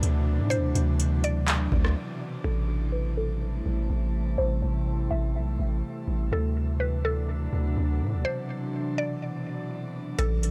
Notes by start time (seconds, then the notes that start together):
Already playing: B2 C3 E3 F#3 D4
0.03 D2, closed hi-hat
0.39 A2
0.50 C5, closed hi-hat
0.57 D2
0.75 D2, closed hi-hat
1.00 closed hi-hat
1.24 D5, closed hi-hat
1.48 clap, closed hi-hat
1.72 D2, kick
1.85 cross-stick
2.44 A1 C3 E3 G3 A3 E4 A4
2.92 B4
3.17 A4
3.66 A1
3.90 A1
4.38 A1 C5
4.63 A1
5.11 A1 E5
5.35 B1
5.59 A1
6.08 A1
6.32 D2 B2 F#3 D4 A4
6.80 B4
7.05 A4
7.53 D2
7.77 D2
8.01 A2
8.14 D2
8.25 C5
8.98 D5
10.19 A1 A4, kick, closed hi-hat
10.43 closed hi-hat